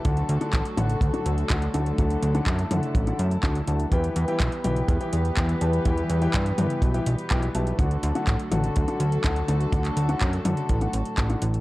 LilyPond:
<<
  \new Staff \with { instrumentName = "Grand piano" } { \time 4/4 \key d \mixolydian \tempo 4 = 124 <d d' fis' a' fis''>8. <d d' fis' a' fis''>8 r16 <d d' fis' a' fis''>8. <d d' fis' a' fis''>16 r8 <d d' fis' a' fis''>16 r16 <d d' fis' a' a''>8 | <d d' fis' a' fis''>8. <d d' fis' a' fis''>8 r16 <d d' fis' a' fis''>8. <d d' fis' a' fis''>16 r8 <d d' fis' a' fis''>16 r16 <d' fis' a' a''>8 | <e e' g' b' g''>8. <e e' g' b' g''>8 r16 <e e' g' b' g''>8. <e e' g' b' g''>16 r8 <e e' g' b' g''>16 r16 <e e' g' b' a''>8 | <e e' g' b' g''>8. <e e' g' b' g''>8 r16 <e e' g' b' g''>8. <e e' g' b' g''>16 r8 <e e' g' b' g''>16 r16 <e' g' b' a''>8 |
<d d' fis' a' fis''>8. <d d' fis' a' fis''>8 r16 <d d' fis' a' fis''>8. <d d' fis' a' fis''>16 r8 <d d' fis' a' fis''>16 r16 <d d' fis' a' a''>8 | <d d' fis' a' fis''>8. <d d' fis' a' fis''>8 r16 <d d' fis' a' fis''>8. <d d' fis' a' fis''>16 r8 <d d' fis' a' a''>16 <d d' fis' a' fis''>16 r8 | }
  \new Staff \with { instrumentName = "String section" } { \time 4/4 \key d \mixolydian << { <d fis a a'>1~ | <d fis a a'>1 | <e g b b'>1~ | <e g b b'>1 |
<d fis a a'>1~ | <d fis a a'>1 | } \\ { fis'1 | e'1 | g'1~ | g'1 |
fis'1~ | fis'1 | } >> }
  \new Staff \with { instrumentName = "Analog synth bass" } { \clef bass \time 4/4 \key d \mixolydian d,8 d,8 a,,8 a,,8 d,8 d,8 d,8 d,8 | d,8 d,8 fis,8 fis,8 a,,8 fis,8 d,8 d,8 | e,8 e,8 b,,8 b,,8 e,8 e,8 e,8 e,8 | e,8 e,8 g,8 g,8 b,,8 b,,8 b,,8 b,,8 |
d,8 d,8 a,,8 a,,8 d,8 d,8 d,8 d,8 | d,8 d,8 fis,8 fis,8 a,,8 a,,8 a,,8 a,,8 | }
  \new DrumStaff \with { instrumentName = "Drums" } \drummode { \time 4/4 <hh bd>16 hh16 hh16 hh16 <hc hh bd>16 hh16 <hh tommh>16 hh16 <hh bd>16 hh16 hh16 hh16 <hc hh bd>16 hh16 hh16 hh16 | <hh bd>16 hh16 hh16 hh16 <hc hh bd>16 hh16 <hh tommh>16 hh16 <hh bd>16 hh16 hh16 hh16 <hc hh bd>16 hh16 hh16 hh16 | <hh bd>16 hh16 hh16 hh16 <hc hh bd>16 hh16 <hh tommh>16 hh16 <hh bd>16 hh16 hh16 hh16 <hc hh bd>16 hh16 hh16 hh16 | <hh bd>16 hh16 hh16 hh16 <hc hh bd>16 hh16 <hh tommh>16 hh16 <hh bd>16 hh16 hh16 hh16 <hc hh bd>16 hh16 hh16 hh16 |
<hh bd>16 hh16 hh16 hh16 <hc hh bd>16 hh16 <hh tommh>16 hh16 <hh bd>16 hh16 hh16 hh16 <hc hh bd>16 hh16 hh16 hh16 | <hh bd>16 <hc hh>16 hh16 hh16 <hc hh bd>16 hh16 <hh tommh>16 hh16 <hh bd>16 hh16 hh16 hh16 <hc hh bd>16 hh16 hh16 hh16 | }
>>